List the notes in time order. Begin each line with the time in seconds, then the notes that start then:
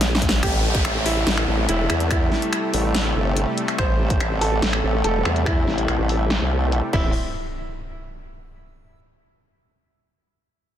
Already playing: A#1
0.01 snare, closed hi-hat
0.15 snare
0.22 kick, closed hi-hat
0.29 A#1, snare
0.43 A1 C3 G3 A3 G4, finger snap, kick, closed hi-hat, crash, downlifter
0.75 kick, closed hi-hat
0.85 A1, finger snap, closed hi-hat
1.06 E4, open hi-hat
1.27 A1, snare, closed hi-hat
1.37 finger snap
1.48 A1
1.69 E1 E4, closed hi-hat
1.90 E2, finger snap, closed hi-hat
2.00 closed hi-hat
2.11 E4, finger snap, kick, closed hi-hat
2.32 snare
2.42 closed hi-hat
2.53 finger snap, closed hi-hat
2.74 A1, open hi-hat
2.95 snare, closed hi-hat
3.16 G1
3.37 closed hi-hat
3.58 closed hi-hat
3.68 finger snap, closed hi-hat
3.78 A1 C5, finger snap, kick, closed hi-hat
4.10 kick, closed hi-hat
4.20 A1, finger snap, closed hi-hat
4.41 A4, open hi-hat
4.62 A1, snare, closed hi-hat
4.73 finger snap
4.83 A1
5.04 E1 A4, closed hi-hat
5.25 E2, finger snap, closed hi-hat
5.36 closed hi-hat
5.46 E4, finger snap, kick, closed hi-hat
5.67 A1, snare
5.78 closed hi-hat
5.88 A#1, finger snap, closed hi-hat
5.99 A1
6.09 open hi-hat
6.30 snare, closed hi-hat
6.41 C2
6.72 closed hi-hat
6.93 A1 A2 G3 C4 E4, kick, crash, impact